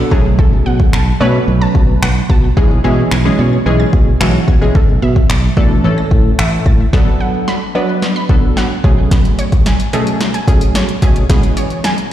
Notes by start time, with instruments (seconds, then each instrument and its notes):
Already playing: analog polysynth F#3 B3 D4 A4
0.11 fingered electric bass B1, analog polysynth F#3 A3 C#4 G#4, synth arpeggio sound A5, kick
0.39 synth arpeggio sound A4, kick
0.52 fingered electric bass B1
0.66 fingered electric bass B2, synth arpeggio sound F#5
0.80 kick
0.93 fingered electric bass B1, synth arpeggio sound A5, finger snap
1.20 fingered electric bass B2, analog polysynth F#3 A3 C#4 B4, synth arpeggio sound C#5
1.48 fingered electric bass B1
1.61 synth arpeggio sound A5
1.75 fingered electric bass B2, kick
2.02 fingered electric bass B1, synth arpeggio sound F#5, finger snap
2.30 fingered electric bass B2, synth arpeggio sound A5, kick
2.57 fingered electric bass B1, analog polysynth E3 G#3 C#4 G#4, synth arpeggio sound G#4, kick
2.71 fingered electric bass B1
2.84 fingered electric bass B2, analog polysynth E3 G#3 C#4 G#4, synth arpeggio sound E5
3.11 fingered electric bass B1, synth arpeggio sound G#6, finger snap
3.25 analog polysynth E3 G#3 C#4 G#4
3.39 fingered electric bass B2, synth arpeggio sound C#5
3.66 fingered electric bass B1, analog polysynth E3 G#3 C#4 G#4
3.80 synth arpeggio sound G#6
3.93 fingered electric bass B2, kick
4.20 fingered electric bass B1, analog polysynth E3 G#3 C#4 F#4, synth arpeggio sound E5, finger snap
4.48 fingered electric bass B2, synth arpeggio sound G#6, kick
4.61 analog polysynth E3 G#3 C#4 G#4
4.75 fingered electric bass B1, synth arpeggio sound A4, kick
4.89 fingered electric bass B1
5.02 fingered electric bass B2, synth arpeggio sound E5
5.16 kick
5.30 fingered electric bass B1, synth arpeggio sound A6, finger snap
5.57 fingered electric bass B2, analog polysynth E3 A3 D4 A4, synth arpeggio sound D5, kick
5.84 fingered electric bass A1, analog polysynth E3 A3 C#4 A4
5.98 synth arpeggio sound A6
6.11 fingered electric bass A2, kick
6.39 fingered electric bass A1, synth arpeggio sound E5, finger snap
6.66 fingered electric bass A2, synth arpeggio sound A6, kick
6.93 analog polysynth F#3 B3 D4 A4, synth arpeggio sound B4, kick, snare
7.20 synth arpeggio sound F#5
7.48 synth arpeggio sound B5, snare
7.75 analog polysynth F#3 B3 D4 B4, synth arpeggio sound D5
8.02 snare
8.16 synth arpeggio sound B5
8.29 analog polysynth F#3 B3 D4 A4, kick
8.57 synth arpeggio sound F#5, snare
8.84 analog polysynth B2 F#3 A3 C#4 G#4, synth arpeggio sound G#5, kick
9.11 synth arpeggio sound B3, kick, snare, closed hi-hat
9.25 closed hi-hat
9.39 synth arpeggio sound C#5, closed hi-hat
9.52 kick, closed hi-hat
9.66 synth arpeggio sound G#5, snare, closed hi-hat
9.80 closed hi-hat
9.93 analog polysynth B2 F#3 A3 C#4 G#4, synth arpeggio sound A4, closed hi-hat
10.07 closed hi-hat
10.21 snare, closed hi-hat
10.34 synth arpeggio sound G#5, closed hi-hat
10.48 analog polysynth B2 F#3 A3 C#4 G#4, kick, closed hi-hat
10.61 closed hi-hat
10.75 synth arpeggio sound C#5, snare, closed hi-hat
10.89 closed hi-hat
11.02 analog polysynth B2 F#3 A3 C#4 G#4, synth arpeggio sound G#5, kick, closed hi-hat
11.16 closed hi-hat
11.29 analog polysynth B2 E3 G#3 C#4 G#4, synth arpeggio sound B3, kick, snare, closed hi-hat
11.43 closed hi-hat
11.57 synth arpeggio sound C#5, closed hi-hat
11.70 closed hi-hat
11.84 synth arpeggio sound G#5, snare, closed hi-hat
11.98 closed hi-hat